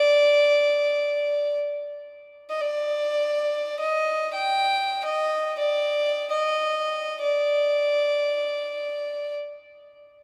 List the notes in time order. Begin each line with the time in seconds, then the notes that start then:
Already playing: D5
2.50 D#5
2.61 D5
3.80 D#5
4.34 G5
5.05 D#5
5.59 D5
6.30 D#5
7.23 D5